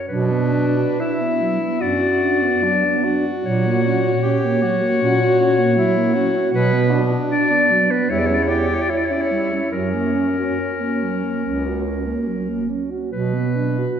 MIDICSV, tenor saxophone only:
0, 0, Header, 1, 2, 480
1, 0, Start_track
1, 0, Key_signature, 2, "minor"
1, 0, Tempo, 896861
1, 51, Time_signature, 4, 2, 24, 8
1, 533, Tempo, 816327
1, 1973, Tempo, 771208
1, 4373, Tempo, 793651
1, 5333, Tempo, 846262
1, 7733, Tempo, 890208
1, 8207, End_track
2, 0, Start_track
2, 0, Title_t, "Tenor saxophone"
2, 0, Program_c, 0, 66
2, 50, Note_on_c, 0, 62, 61
2, 534, Note_on_c, 0, 64, 59
2, 543, Note_off_c, 0, 62, 0
2, 1008, Note_on_c, 0, 66, 61
2, 1017, Note_off_c, 0, 64, 0
2, 1495, Note_on_c, 0, 62, 53
2, 1504, Note_off_c, 0, 66, 0
2, 1734, Note_on_c, 0, 66, 66
2, 1743, Note_off_c, 0, 62, 0
2, 2465, Note_on_c, 0, 67, 67
2, 2474, Note_off_c, 0, 66, 0
2, 2708, Note_on_c, 0, 66, 69
2, 2717, Note_off_c, 0, 67, 0
2, 3414, Note_off_c, 0, 66, 0
2, 3418, Note_on_c, 0, 64, 63
2, 3650, Note_on_c, 0, 66, 68
2, 3660, Note_off_c, 0, 64, 0
2, 3888, Note_off_c, 0, 66, 0
2, 3891, Note_on_c, 0, 66, 67
2, 4127, Note_on_c, 0, 62, 66
2, 4136, Note_off_c, 0, 66, 0
2, 4682, Note_off_c, 0, 62, 0
2, 4851, Note_on_c, 0, 64, 59
2, 5085, Note_on_c, 0, 67, 67
2, 5094, Note_off_c, 0, 64, 0
2, 5335, Note_on_c, 0, 64, 57
2, 5344, Note_off_c, 0, 67, 0
2, 5808, Note_off_c, 0, 64, 0
2, 5812, Note_on_c, 0, 61, 47
2, 7473, Note_off_c, 0, 61, 0
2, 8207, End_track
0, 0, End_of_file